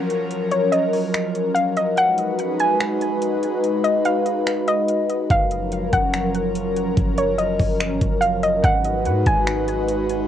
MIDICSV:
0, 0, Header, 1, 6, 480
1, 0, Start_track
1, 0, Key_signature, 6, "major"
1, 0, Tempo, 416667
1, 350, Time_signature, 4, 2, 24, 8
1, 11838, End_track
2, 0, Start_track
2, 0, Title_t, "Synth pluck"
2, 0, Program_c, 0, 84
2, 0, Note_on_c, 0, 78, 78
2, 305, Note_off_c, 0, 78, 0
2, 590, Note_on_c, 0, 73, 76
2, 818, Note_off_c, 0, 73, 0
2, 826, Note_on_c, 0, 75, 70
2, 1279, Note_off_c, 0, 75, 0
2, 1777, Note_on_c, 0, 77, 84
2, 2012, Note_off_c, 0, 77, 0
2, 2035, Note_on_c, 0, 75, 81
2, 2261, Note_off_c, 0, 75, 0
2, 2276, Note_on_c, 0, 78, 105
2, 2951, Note_off_c, 0, 78, 0
2, 2995, Note_on_c, 0, 80, 80
2, 4147, Note_off_c, 0, 80, 0
2, 4424, Note_on_c, 0, 75, 87
2, 4655, Note_off_c, 0, 75, 0
2, 4672, Note_on_c, 0, 77, 85
2, 5348, Note_off_c, 0, 77, 0
2, 5392, Note_on_c, 0, 75, 86
2, 6068, Note_off_c, 0, 75, 0
2, 6116, Note_on_c, 0, 77, 95
2, 6790, Note_off_c, 0, 77, 0
2, 6831, Note_on_c, 0, 78, 80
2, 7985, Note_off_c, 0, 78, 0
2, 8270, Note_on_c, 0, 73, 77
2, 8498, Note_off_c, 0, 73, 0
2, 8505, Note_on_c, 0, 75, 73
2, 8959, Note_off_c, 0, 75, 0
2, 9456, Note_on_c, 0, 77, 81
2, 9691, Note_off_c, 0, 77, 0
2, 9713, Note_on_c, 0, 75, 81
2, 9940, Note_off_c, 0, 75, 0
2, 9955, Note_on_c, 0, 78, 102
2, 10629, Note_off_c, 0, 78, 0
2, 10673, Note_on_c, 0, 80, 81
2, 11826, Note_off_c, 0, 80, 0
2, 11838, End_track
3, 0, Start_track
3, 0, Title_t, "Analog synth pad"
3, 0, Program_c, 1, 89
3, 0, Note_on_c, 1, 53, 77
3, 0, Note_on_c, 1, 54, 81
3, 0, Note_on_c, 1, 61, 76
3, 0, Note_on_c, 1, 70, 90
3, 2232, Note_off_c, 1, 53, 0
3, 2232, Note_off_c, 1, 54, 0
3, 2232, Note_off_c, 1, 61, 0
3, 2232, Note_off_c, 1, 70, 0
3, 2270, Note_on_c, 1, 56, 87
3, 2270, Note_on_c, 1, 66, 77
3, 2271, Note_on_c, 1, 63, 76
3, 2271, Note_on_c, 1, 71, 91
3, 6072, Note_off_c, 1, 56, 0
3, 6072, Note_off_c, 1, 63, 0
3, 6072, Note_off_c, 1, 66, 0
3, 6072, Note_off_c, 1, 71, 0
3, 6110, Note_on_c, 1, 53, 77
3, 6110, Note_on_c, 1, 54, 84
3, 6111, Note_on_c, 1, 61, 74
3, 6111, Note_on_c, 1, 70, 93
3, 9912, Note_off_c, 1, 53, 0
3, 9912, Note_off_c, 1, 54, 0
3, 9912, Note_off_c, 1, 61, 0
3, 9912, Note_off_c, 1, 70, 0
3, 9948, Note_on_c, 1, 66, 76
3, 9948, Note_on_c, 1, 71, 92
3, 9949, Note_on_c, 1, 56, 81
3, 9949, Note_on_c, 1, 63, 73
3, 11838, Note_off_c, 1, 56, 0
3, 11838, Note_off_c, 1, 63, 0
3, 11838, Note_off_c, 1, 66, 0
3, 11838, Note_off_c, 1, 71, 0
3, 11838, End_track
4, 0, Start_track
4, 0, Title_t, "808-style bass"
4, 0, Program_c, 2, 38
4, 6110, Note_on_c, 2, 30, 113
4, 6801, Note_off_c, 2, 30, 0
4, 6831, Note_on_c, 2, 30, 101
4, 7985, Note_off_c, 2, 30, 0
4, 8030, Note_on_c, 2, 30, 115
4, 8721, Note_off_c, 2, 30, 0
4, 8750, Note_on_c, 2, 30, 103
4, 9110, Note_on_c, 2, 32, 101
4, 9128, Note_off_c, 2, 30, 0
4, 9225, Note_off_c, 2, 32, 0
4, 9232, Note_on_c, 2, 30, 109
4, 9923, Note_off_c, 2, 30, 0
4, 9950, Note_on_c, 2, 32, 102
4, 10430, Note_on_c, 2, 44, 101
4, 10448, Note_off_c, 2, 32, 0
4, 10658, Note_off_c, 2, 44, 0
4, 10671, Note_on_c, 2, 32, 106
4, 11838, Note_off_c, 2, 32, 0
4, 11838, End_track
5, 0, Start_track
5, 0, Title_t, "Downlifter"
5, 0, Program_c, 3, 103
5, 0, Note_on_c, 3, 60, 84
5, 2271, Note_off_c, 3, 60, 0
5, 11838, End_track
6, 0, Start_track
6, 0, Title_t, "Drums"
6, 112, Note_on_c, 9, 42, 69
6, 228, Note_off_c, 9, 42, 0
6, 351, Note_on_c, 9, 42, 69
6, 466, Note_off_c, 9, 42, 0
6, 588, Note_on_c, 9, 42, 72
6, 704, Note_off_c, 9, 42, 0
6, 830, Note_on_c, 9, 42, 71
6, 945, Note_off_c, 9, 42, 0
6, 1070, Note_on_c, 9, 46, 58
6, 1185, Note_off_c, 9, 46, 0
6, 1310, Note_on_c, 9, 42, 83
6, 1313, Note_on_c, 9, 26, 118
6, 1425, Note_off_c, 9, 42, 0
6, 1428, Note_off_c, 9, 26, 0
6, 1551, Note_on_c, 9, 42, 65
6, 1666, Note_off_c, 9, 42, 0
6, 1789, Note_on_c, 9, 42, 83
6, 1904, Note_off_c, 9, 42, 0
6, 2031, Note_on_c, 9, 42, 71
6, 2146, Note_off_c, 9, 42, 0
6, 2270, Note_on_c, 9, 42, 71
6, 2385, Note_off_c, 9, 42, 0
6, 2508, Note_on_c, 9, 42, 71
6, 2623, Note_off_c, 9, 42, 0
6, 2749, Note_on_c, 9, 42, 72
6, 2864, Note_off_c, 9, 42, 0
6, 2989, Note_on_c, 9, 42, 77
6, 3104, Note_off_c, 9, 42, 0
6, 3229, Note_on_c, 9, 42, 80
6, 3232, Note_on_c, 9, 26, 119
6, 3344, Note_off_c, 9, 42, 0
6, 3347, Note_off_c, 9, 26, 0
6, 3471, Note_on_c, 9, 42, 63
6, 3586, Note_off_c, 9, 42, 0
6, 3708, Note_on_c, 9, 42, 89
6, 3823, Note_off_c, 9, 42, 0
6, 3951, Note_on_c, 9, 42, 71
6, 4066, Note_off_c, 9, 42, 0
6, 4191, Note_on_c, 9, 42, 68
6, 4306, Note_off_c, 9, 42, 0
6, 4428, Note_on_c, 9, 42, 72
6, 4543, Note_off_c, 9, 42, 0
6, 4668, Note_on_c, 9, 42, 71
6, 4783, Note_off_c, 9, 42, 0
6, 4908, Note_on_c, 9, 42, 75
6, 5023, Note_off_c, 9, 42, 0
6, 5149, Note_on_c, 9, 42, 80
6, 5151, Note_on_c, 9, 26, 120
6, 5264, Note_off_c, 9, 42, 0
6, 5266, Note_off_c, 9, 26, 0
6, 5390, Note_on_c, 9, 42, 64
6, 5505, Note_off_c, 9, 42, 0
6, 5628, Note_on_c, 9, 42, 80
6, 5743, Note_off_c, 9, 42, 0
6, 5871, Note_on_c, 9, 42, 72
6, 5986, Note_off_c, 9, 42, 0
6, 6110, Note_on_c, 9, 36, 114
6, 6110, Note_on_c, 9, 42, 67
6, 6225, Note_off_c, 9, 36, 0
6, 6225, Note_off_c, 9, 42, 0
6, 6347, Note_on_c, 9, 42, 71
6, 6463, Note_off_c, 9, 42, 0
6, 6588, Note_on_c, 9, 42, 72
6, 6703, Note_off_c, 9, 42, 0
6, 6828, Note_on_c, 9, 42, 74
6, 6831, Note_on_c, 9, 36, 87
6, 6944, Note_off_c, 9, 42, 0
6, 6946, Note_off_c, 9, 36, 0
6, 7068, Note_on_c, 9, 42, 86
6, 7071, Note_on_c, 9, 26, 118
6, 7184, Note_off_c, 9, 42, 0
6, 7186, Note_off_c, 9, 26, 0
6, 7310, Note_on_c, 9, 42, 67
6, 7425, Note_off_c, 9, 42, 0
6, 7548, Note_on_c, 9, 42, 89
6, 7663, Note_off_c, 9, 42, 0
6, 7791, Note_on_c, 9, 42, 72
6, 7906, Note_off_c, 9, 42, 0
6, 8029, Note_on_c, 9, 42, 72
6, 8030, Note_on_c, 9, 36, 120
6, 8145, Note_off_c, 9, 36, 0
6, 8145, Note_off_c, 9, 42, 0
6, 8267, Note_on_c, 9, 42, 70
6, 8382, Note_off_c, 9, 42, 0
6, 8508, Note_on_c, 9, 42, 72
6, 8623, Note_off_c, 9, 42, 0
6, 8748, Note_on_c, 9, 46, 56
6, 8751, Note_on_c, 9, 36, 88
6, 8863, Note_off_c, 9, 46, 0
6, 8866, Note_off_c, 9, 36, 0
6, 8989, Note_on_c, 9, 42, 80
6, 8991, Note_on_c, 9, 26, 121
6, 9104, Note_off_c, 9, 42, 0
6, 9106, Note_off_c, 9, 26, 0
6, 9230, Note_on_c, 9, 42, 67
6, 9232, Note_on_c, 9, 36, 99
6, 9345, Note_off_c, 9, 42, 0
6, 9347, Note_off_c, 9, 36, 0
6, 9469, Note_on_c, 9, 42, 86
6, 9584, Note_off_c, 9, 42, 0
6, 9712, Note_on_c, 9, 42, 75
6, 9827, Note_off_c, 9, 42, 0
6, 9950, Note_on_c, 9, 36, 112
6, 9950, Note_on_c, 9, 42, 72
6, 10065, Note_off_c, 9, 36, 0
6, 10065, Note_off_c, 9, 42, 0
6, 10187, Note_on_c, 9, 42, 71
6, 10303, Note_off_c, 9, 42, 0
6, 10428, Note_on_c, 9, 42, 72
6, 10543, Note_off_c, 9, 42, 0
6, 10668, Note_on_c, 9, 42, 78
6, 10671, Note_on_c, 9, 36, 86
6, 10783, Note_off_c, 9, 42, 0
6, 10786, Note_off_c, 9, 36, 0
6, 10908, Note_on_c, 9, 42, 80
6, 10910, Note_on_c, 9, 26, 121
6, 11023, Note_off_c, 9, 42, 0
6, 11026, Note_off_c, 9, 26, 0
6, 11150, Note_on_c, 9, 42, 63
6, 11265, Note_off_c, 9, 42, 0
6, 11387, Note_on_c, 9, 42, 85
6, 11502, Note_off_c, 9, 42, 0
6, 11630, Note_on_c, 9, 42, 74
6, 11745, Note_off_c, 9, 42, 0
6, 11838, End_track
0, 0, End_of_file